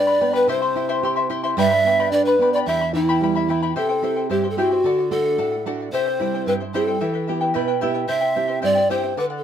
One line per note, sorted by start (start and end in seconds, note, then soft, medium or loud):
0.00 0.45 G2 medium
0.00 0.20 D4 medium
0.00 0.37 D5 loud
0.07 0.20 B4 soft
0.07 0.20 D5 soft
0.07 0.21 B5 medium
0.21 0.48 B3 medium
0.21 0.32 B4 medium
0.21 0.32 D5 medium
0.21 0.33 G5 medium
0.21 0.32 B5 medium
0.33 0.48 G4 medium
0.33 0.48 B4 medium
0.33 0.52 B4 medium
0.33 0.48 D5 medium
0.33 0.47 G5 medium
0.33 0.48 B5 medium
0.48 1.54 C3 medium
0.48 0.62 E4 medium
0.48 0.62 C5 medium
0.48 1.31 C5 medium
0.48 0.61 E5 medium
0.48 0.62 G5 medium
0.48 0.61 C6 medium
0.62 0.75 E4 soft
0.62 0.75 E5 soft
0.62 0.75 C6 soft
0.76 1.02 E4 medium
0.76 0.88 E4 medium
0.76 0.88 E5 medium
0.76 0.88 G5 medium
0.76 0.88 C6 medium
0.89 1.03 E4 medium
0.89 1.03 C5 medium
0.89 1.03 E5 medium
0.89 1.02 G5 medium
0.89 1.03 C6 medium
1.03 1.17 E4 medium
1.03 1.29 G4 medium
1.03 1.15 E5 medium
1.03 1.17 G5 medium
1.03 1.15 C6 medium
1.16 1.29 E4 medium
1.16 1.29 E5 medium
1.16 1.29 C6 medium
1.30 1.57 E4 medium
1.30 1.43 E4 medium
1.30 1.43 E5 medium
1.30 1.43 G5 medium
1.30 1.42 C6 medium
1.44 1.58 E4 medium
1.44 1.57 C5 medium
1.44 1.58 E5 medium
1.44 1.57 G5 medium
1.44 1.58 C6 medium
1.57 2.63 G2 medium
1.57 1.71 G4 medium
1.57 1.72 B4 medium
1.57 1.71 D5 medium
1.57 2.13 E5 loud
1.57 1.72 G5 medium
1.57 1.70 B5 medium
1.71 1.86 B4 soft
1.71 1.86 D5 soft
1.71 1.85 B5 medium
1.85 2.11 B3 medium
1.85 1.99 B4 medium
1.85 1.98 D5 medium
1.85 1.99 G5 medium
1.85 1.99 B5 medium
1.99 2.13 G4 medium
1.99 2.13 B4 medium
1.99 2.13 D5 medium
1.99 2.12 G5 medium
1.99 2.13 B5 medium
2.12 2.38 D4 soft
2.12 2.27 B4 medium
2.12 2.25 D5 loud
2.12 2.27 D5 medium
2.12 2.27 G5 medium
2.12 2.26 B5 medium
2.25 2.51 B4 medium
2.25 2.40 B4 soft
2.25 2.41 D5 medium
2.25 2.40 B5 soft
2.39 2.66 B3 medium
2.39 2.54 B4 medium
2.39 2.55 D5 medium
2.39 2.54 G5 medium
2.39 2.54 B5 medium
2.53 2.67 G4 medium
2.53 2.68 B4 medium
2.53 2.59 D5 medium
2.53 2.68 D5 medium
2.53 2.67 G5 medium
2.53 2.68 B5 medium
2.66 3.72 E2 medium
2.66 2.81 E4 medium
2.66 2.81 G4 medium
2.66 2.92 E5 loud
2.66 2.81 E5 medium
2.66 2.81 G5 medium
2.66 2.80 B5 medium
2.81 2.94 E4 soft
2.81 2.95 E5 soft
2.81 2.95 B5 medium
2.94 3.20 E3 medium
2.94 3.72 E4 medium
2.94 3.08 E4 medium
2.94 3.08 E5 medium
2.94 3.08 G5 medium
2.94 3.08 B5 medium
3.09 3.22 E4 medium
3.09 3.22 G4 medium
3.09 3.22 E5 medium
3.09 3.22 G5 medium
3.09 3.22 B5 medium
3.21 3.47 G3 medium
3.21 3.36 E4 medium
3.21 3.35 E5 medium
3.21 3.36 G5 medium
3.21 3.34 B5 medium
3.35 3.49 E4 medium
3.35 3.49 E5 medium
3.35 3.49 B5 medium
3.48 3.75 E3 medium
3.48 3.61 E4 medium
3.48 3.62 E5 medium
3.48 3.62 G5 medium
3.48 3.61 B5 medium
3.62 3.75 E4 medium
3.62 3.75 G4 medium
3.62 3.75 E5 medium
3.62 3.76 G5 medium
3.62 3.76 B5 medium
3.76 4.29 C3 medium
3.76 3.89 E4 medium
3.76 3.89 G4 medium
3.76 4.27 A4 medium
3.76 3.89 C5 medium
3.76 3.89 E5 medium
3.76 3.88 G5 medium
3.89 4.02 E4 soft
3.89 4.02 C5 soft
3.89 4.02 G5 soft
4.02 4.46 C4 soft
4.02 4.46 E4 soft
4.02 4.17 E4 soft
4.02 4.47 G4 soft
4.02 4.16 C5 medium
4.02 4.16 E5 soft
4.02 4.15 G5 medium
4.16 4.29 E4 soft
4.16 4.29 C5 soft
4.16 4.30 G5 soft
4.30 4.83 G2 medium
4.30 4.44 E4 medium
4.30 4.44 G4 medium
4.30 4.49 G4 medium
4.30 4.43 C5 medium
4.30 4.44 E5 medium
4.30 4.43 G5 medium
4.44 4.57 E4 soft
4.44 4.58 C5 soft
4.44 4.57 G5 soft
4.50 4.60 A4 medium
4.57 4.79 C4 soft
4.57 4.79 E4 soft
4.57 4.71 E4 medium
4.57 5.11 F#4 medium
4.57 4.79 G4 medium
4.57 4.71 G4 medium
4.57 4.71 C5 medium
4.57 4.71 E5 medium
4.57 4.70 G5 medium
4.71 4.85 E4 soft
4.71 4.85 C5 soft
4.71 4.85 G5 soft
4.84 5.37 D3 medium
4.84 4.98 A4 medium
4.84 4.99 D5 medium
4.84 4.97 F#5 medium
4.98 5.11 D5 soft
4.98 5.12 F#5 soft
5.11 5.54 A3 soft
5.11 5.54 D4 soft
5.11 5.55 F#4 medium
5.11 5.25 A4 medium
5.11 5.63 A4 medium
5.11 5.25 D5 medium
5.11 5.24 F#5 medium
5.25 5.38 D5 soft
5.25 5.38 F#5 soft
5.38 5.91 A2 medium
5.38 5.52 A4 medium
5.38 5.52 D5 medium
5.38 5.51 F#5 medium
5.52 5.65 D5 soft
5.52 5.66 F#5 soft
5.66 5.87 A3 soft
5.66 5.88 D4 soft
5.66 5.88 F#4 medium
5.66 5.80 A4 medium
5.66 5.80 D5 medium
5.66 5.79 F#5 medium
5.80 5.93 D5 soft
5.80 5.93 F#5 soft
5.92 6.46 C3 medium
5.92 6.07 E4 medium
5.92 6.07 G4 medium
5.92 6.47 C5 loud
5.92 6.06 C5 medium
5.92 6.07 E5 medium
5.92 6.05 G5 medium
6.07 6.19 E4 soft
6.07 6.20 C5 soft
6.07 6.20 G5 soft
6.20 6.63 G3 soft
6.20 6.63 C4 soft
6.20 6.34 E4 soft
6.20 6.64 E4 soft
6.20 6.34 C5 soft
6.20 6.34 E5 medium
6.20 6.33 G5 medium
6.34 6.47 E4 soft
6.34 6.48 C5 soft
6.34 6.48 G5 soft
6.46 6.99 G2 medium
6.46 6.61 E4 medium
6.46 6.61 G4 medium
6.46 6.53 B4 loud
6.46 6.60 C5 medium
6.46 6.61 E5 medium
6.46 6.59 G5 medium
6.60 6.73 E4 soft
6.60 6.74 C5 soft
6.60 6.74 G5 soft
6.74 6.96 G3 soft
6.74 6.96 C4 soft
6.74 6.88 E4 medium
6.74 6.96 E4 soft
6.74 6.88 G4 medium
6.74 7.25 A4 medium
6.74 6.87 C5 medium
6.74 6.88 E5 medium
6.74 6.86 G5 medium
6.87 7.00 E4 soft
6.87 7.01 C5 soft
6.87 7.00 G5 soft
7.01 7.54 E3 medium
7.01 7.14 E4 medium
7.01 7.15 G4 medium
7.01 7.13 B4 medium
7.01 7.13 E5 medium
7.01 7.12 G5 medium
7.14 7.27 E4 soft
7.14 7.27 B4 soft
7.14 7.28 G5 soft
7.27 7.72 B3 soft
7.27 7.41 E4 soft
7.27 7.72 E4 soft
7.27 7.55 G4 soft
7.27 7.40 B4 medium
7.27 7.42 E5 medium
7.27 7.40 G5 medium
7.41 7.53 E4 soft
7.41 7.53 B4 soft
7.41 7.54 G5 medium
7.54 8.08 B2 medium
7.54 7.68 E4 medium
7.54 7.68 G4 medium
7.54 7.67 B4 medium
7.54 7.81 B4 medium
7.54 7.68 E5 medium
7.54 7.66 G5 medium
7.68 7.81 E4 soft
7.68 7.81 B4 medium
7.68 7.81 G5 medium
7.81 8.04 B3 soft
7.81 7.94 E4 medium
7.81 8.04 E4 soft
7.81 7.95 G4 medium
7.81 8.05 G4 soft
7.81 7.94 B4 medium
7.81 7.95 E5 medium
7.81 8.08 E5 medium
7.81 7.93 G5 medium
7.94 8.07 E4 soft
7.94 8.08 B4 soft
7.94 8.07 G5 soft
8.07 8.62 C3 medium
8.07 8.21 E4 medium
8.07 8.22 G4 medium
8.07 8.20 C5 medium
8.07 8.22 E5 medium
8.07 8.59 E5 loud
8.07 8.19 G5 medium
8.21 8.34 E4 soft
8.21 8.35 C5 soft
8.21 8.35 G5 soft
8.35 8.79 C4 soft
8.35 8.48 E4 soft
8.35 8.80 E4 soft
8.35 8.80 G4 soft
8.35 8.48 C5 soft
8.35 8.49 E5 medium
8.35 8.47 G5 medium
8.48 8.61 E4 soft
8.48 8.61 C5 soft
8.48 8.61 G5 soft
8.62 9.16 G2 medium
8.62 8.76 E4 medium
8.62 8.76 G4 medium
8.62 8.75 C5 medium
8.62 8.92 D5 medium
8.62 8.76 E5 medium
8.62 8.74 G5 medium
8.75 8.89 E4 soft
8.75 8.90 C5 soft
8.75 8.90 G5 medium
8.90 9.12 C4 medium
8.90 9.03 E4 medium
8.90 9.12 E4 soft
8.90 9.04 G4 medium
8.90 9.12 G4 medium
8.90 9.02 C5 medium
8.90 9.18 C5 medium
8.90 9.04 E5 medium
8.90 9.02 G5 medium
9.03 9.18 E4 soft
9.03 9.17 C5 soft
9.03 9.17 G5 medium
9.17 9.44 D3 medium
9.17 9.31 A4 medium
9.17 9.25 B4 medium
9.17 9.31 D5 medium
9.17 9.29 F#5 medium
9.30 9.43 D5 soft
9.30 9.44 F#5 soft
9.38 9.44 A4 medium